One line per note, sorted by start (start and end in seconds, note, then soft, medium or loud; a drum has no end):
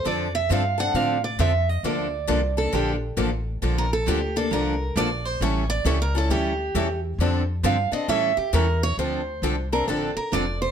0.05 0.49 F2 medium
0.05 0.27 D3 medium
0.05 0.27 F3 medium
0.05 0.27 C4 medium
0.05 0.27 D4 medium
0.05 0.28 A4 medium
0.05 0.34 D5 medium
0.35 0.50 E5 medium
0.50 0.93 G2 loud
0.50 0.62 D3 medium
0.50 0.62 F3 medium
0.50 0.62 C4 medium
0.50 0.63 D4 medium
0.50 0.62 A4 loud
0.50 0.79 F5 medium
0.78 0.94 C4 medium
0.78 0.95 D4 medium
0.78 0.94 A4 medium
0.78 0.95 F#5 loud
0.94 1.38 A2 medium
0.94 1.17 D3 medium
0.94 1.17 F3 medium
0.94 1.17 C4 medium
0.94 1.17 D4 medium
0.94 1.17 A4 medium
0.94 1.23 F5 medium
1.24 1.40 D5 medium
1.39 1.83 F2 medium
1.39 1.51 D3 medium
1.39 1.51 F3 medium
1.39 1.51 C4 medium
1.39 1.51 D4 medium
1.39 1.51 A4 medium
1.39 1.69 E5 medium
1.69 1.84 D#5 medium
1.83 2.27 D2 medium
1.83 2.06 D3 medium
1.83 2.06 F3 medium
1.83 2.06 A#3 medium
1.83 2.06 D4 medium
1.83 2.06 A4 medium
1.83 2.54 D5 medium
2.27 2.72 C2 medium
2.27 2.40 D3 medium
2.27 2.40 F3 medium
2.27 2.40 A#3 medium
2.27 2.40 D4 loud
2.27 2.40 A4 loud
2.57 2.72 A#3 soft
2.57 2.72 D4 medium
2.57 2.72 A4 medium
2.57 2.73 A4 medium
2.73 3.16 A#1 medium
2.73 2.95 D3 medium
2.73 2.95 F3 medium
2.73 2.95 A#3 medium
2.73 2.95 D4 medium
2.73 2.92 G4 medium
2.73 2.95 A4 medium
3.17 3.61 A1 medium
3.17 3.29 D3 medium
3.17 3.29 F3 medium
3.17 3.29 A#3 medium
3.17 3.30 D4 medium
3.17 3.30 A4 medium
3.62 4.06 A#1 medium
3.62 3.84 D3 medium
3.62 3.84 F3 medium
3.62 3.84 A#3 medium
3.62 3.85 D4 medium
3.62 3.85 A4 medium
3.78 3.92 A#4 medium
3.93 4.07 A4 medium
4.07 4.50 D2 loud
4.07 4.19 D3 medium
4.07 4.19 F3 medium
4.07 4.19 A#3 loud
4.07 4.19 D4 loud
4.07 4.36 G4 medium
4.07 4.19 A4 loud
4.36 4.52 A#3 medium
4.36 4.52 D4 medium
4.36 4.52 A4 medium
4.36 4.52 A4 loud
4.51 4.95 C2 medium
4.51 4.74 D3 medium
4.51 4.74 F3 medium
4.51 4.74 A#3 medium
4.51 4.74 D4 medium
4.51 4.75 A4 medium
4.51 4.94 A#4 medium
4.96 5.39 A#1 loud
4.96 5.08 D3 medium
4.96 5.09 F3 medium
4.96 5.09 A#3 medium
4.96 5.09 D4 medium
4.96 5.09 A4 medium
4.96 5.25 D5 loud
5.25 5.41 C5 medium
5.40 5.84 A1 medium
5.40 5.63 E3 medium
5.40 5.63 G3 medium
5.40 5.64 C#4 medium
5.40 5.64 E4 medium
5.40 5.64 A4 medium
5.40 5.69 C#5 medium
5.70 5.85 D5 loud
5.85 6.29 C#2 loud
5.85 5.97 E3 medium
5.85 5.97 G3 medium
5.85 5.98 C#4 loud
5.85 5.98 E4 medium
5.85 5.97 A4 loud
5.85 6.01 C#5 medium
6.02 6.16 A#4 medium
6.15 6.29 C#4 soft
6.15 6.30 E4 medium
6.15 6.30 A4 medium
6.15 6.31 A4 medium
6.30 6.73 D2 medium
6.30 6.52 E3 medium
6.30 6.52 G3 medium
6.30 6.52 C#4 medium
6.30 6.52 E4 medium
6.30 7.00 G4 medium
6.30 6.52 A4 medium
6.75 7.18 E2 loud
6.75 6.87 E3 medium
6.75 6.87 G3 medium
6.75 6.87 C#4 medium
6.75 6.87 E4 loud
6.75 6.87 A4 medium
7.18 7.62 F2 medium
7.18 7.42 D3 medium
7.18 7.42 F3 medium
7.18 7.42 C4 medium
7.18 7.42 D4 medium
7.18 7.42 A4 medium
7.63 7.90 G2 loud
7.63 7.76 D3 medium
7.63 7.76 F3 medium
7.63 7.76 C4 loud
7.63 7.76 D4 loud
7.63 7.76 A4 medium
7.63 7.93 F5 medium
7.92 8.08 C4 medium
7.92 8.08 D4 medium
7.92 8.08 A4 medium
7.92 8.09 D#5 loud
7.92 muted upright bass stroke soft
8.08 8.35 A2 medium
8.08 8.30 E3 medium
8.08 8.31 G3 medium
8.08 8.31 C#4 medium
8.08 8.31 E4 medium
8.08 8.31 A4 medium
8.08 8.37 E5 loud
8.37 8.53 G4 medium
8.37 muted upright bass stroke soft
8.53 8.97 E2 loud
8.53 8.65 E3 medium
8.53 8.65 G3 loud
8.53 8.65 C#4 loud
8.53 8.65 E4 loud
8.53 8.65 A4 loud
8.53 8.82 A#4 medium
8.83 8.98 C#5 loud
8.97 9.41 D2 medium
8.97 9.20 D3 medium
8.97 9.20 F3 medium
8.97 9.20 C4 medium
8.97 9.20 D4 medium
8.97 9.20 A4 medium
8.97 9.68 C5 medium
9.42 9.86 C2 medium
9.42 9.55 D3 medium
9.42 9.55 F3 medium
9.42 9.55 C4 medium
9.42 9.55 D4 medium
9.42 9.55 A4 medium
9.72 9.88 C4 soft
9.72 9.88 D4 medium
9.72 9.88 A4 medium
9.72 9.87 A#4 medium
9.87 10.14 A1 medium
9.87 10.10 D3 medium
9.87 10.10 F3 medium
9.87 10.10 C4 medium
9.87 10.10 D4 medium
9.87 10.15 A4 medium
9.87 10.10 A4 medium
10.16 10.32 A#4 medium
10.16 muted upright bass stroke soft
10.32 10.71 F1 loud
10.32 10.45 D3 medium
10.32 10.45 F3 medium
10.32 10.45 C4 medium
10.32 10.45 D4 medium
10.32 10.45 A4 medium
10.32 10.60 D5 medium
10.62 10.71 C5 medium